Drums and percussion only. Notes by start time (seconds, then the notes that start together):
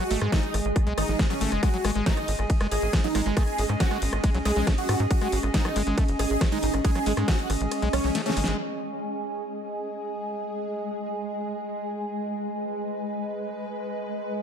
0.11 open hi-hat
0.21 cross-stick, closed hi-hat
0.32 kick, snare, closed hi-hat
0.43 closed hi-hat
0.54 cross-stick, open hi-hat
0.65 closed hi-hat
0.76 kick, cross-stick, closed hi-hat
0.87 closed hi-hat
0.98 cross-stick, open hi-hat
1.08 snare, closed hi-hat
1.19 kick, snare, closed hi-hat
1.30 cross-stick, closed hi-hat
1.41 open hi-hat
1.52 cross-stick, closed hi-hat
1.63 kick, cross-stick, closed hi-hat, ride
1.74 closed hi-hat
1.85 cross-stick, open hi-hat
1.95 closed hi-hat
2.06 kick, snare, closed hi-hat, ride
2.17 cross-stick, closed hi-hat
2.28 open hi-hat
2.39 cross-stick, closed hi-hat
2.50 kick, closed hi-hat, ride
2.61 cross-stick, closed hi-hat
2.71 open hi-hat
2.82 closed hi-hat
2.93 kick, cross-stick, snare, closed hi-hat, ride
3.04 closed hi-hat
3.15 cross-stick, open hi-hat
3.26 closed hi-hat
3.37 kick, cross-stick, closed hi-hat, ride
3.48 closed hi-hat
3.58 open hi-hat
3.69 cross-stick, closed hi-hat
3.80 kick, snare, closed hi-hat, ride
3.91 cross-stick, closed hi-hat
4.02 open hi-hat
4.13 cross-stick, closed hi-hat
4.24 kick, closed hi-hat, ride
4.34 closed hi-hat
4.45 cross-stick, open hi-hat
4.56 snare, closed hi-hat
4.67 kick, cross-stick, snare, closed hi-hat, ride
4.78 closed hi-hat
4.89 cross-stick, open hi-hat
5.00 closed hi-hat
5.11 kick, closed hi-hat, ride
5.21 cross-stick, closed hi-hat
5.32 open hi-hat
5.43 cross-stick, closed hi-hat
5.54 kick, snare, closed hi-hat, ride
5.65 cross-stick, closed hi-hat
5.76 open hi-hat
5.87 closed hi-hat
5.98 kick, cross-stick, closed hi-hat, ride
6.08 closed hi-hat
6.19 cross-stick, open hi-hat
6.30 closed hi-hat
6.41 kick, cross-stick, snare, closed hi-hat, ride
6.52 closed hi-hat
6.63 open hi-hat
6.74 cross-stick, closed hi-hat
6.85 kick, closed hi-hat, ride
6.95 cross-stick, closed hi-hat
7.06 open hi-hat
7.17 cross-stick, closed hi-hat
7.28 kick, snare, closed hi-hat, ride
7.39 closed hi-hat
7.50 cross-stick, open hi-hat
7.61 closed hi-hat
7.71 cross-stick, closed hi-hat, ride
7.82 closed hi-hat
7.93 cross-stick, open hi-hat
8.04 snare, open hi-hat
8.15 snare, closed hi-hat, ride
8.26 snare, closed hi-hat
8.37 open hi-hat
8.44 snare, closed hi-hat